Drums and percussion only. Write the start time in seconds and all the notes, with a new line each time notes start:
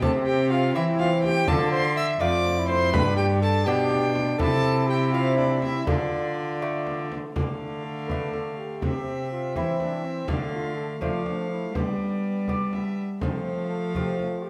0.02 frame drum
1.00 frame drum
1.24 frame drum
1.48 frame drum
2.45 frame drum
2.69 frame drum
2.93 frame drum
3.91 frame drum
4.15 frame drum
4.40 frame drum
5.38 frame drum
5.62 frame drum
5.87 frame drum
6.87 frame drum
7.12 frame drum
7.36 frame drum
8.09 frame drum
8.34 frame drum
8.82 frame drum
9.55 frame drum
9.80 frame drum
10.28 frame drum
11.02 frame drum
11.26 frame drum
11.75 frame drum
12.48 frame drum
12.73 frame drum
13.21 frame drum
13.95 frame drum
14.19 frame drum